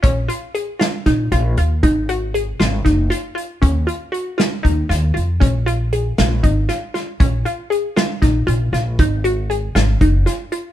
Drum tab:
HH |xxxxxxx|xxxxxxx|xxxxxxx|xxxxxxx|
SD |---oo--|---oo--|---o-o-|---o-oo|
BD |o---o--|o---o--|o---o--|o---o--|

HH |xxxxxxx|xxxxxxx|
SD |---oo-o|---o-o-|
BD |o---o--|o---o--|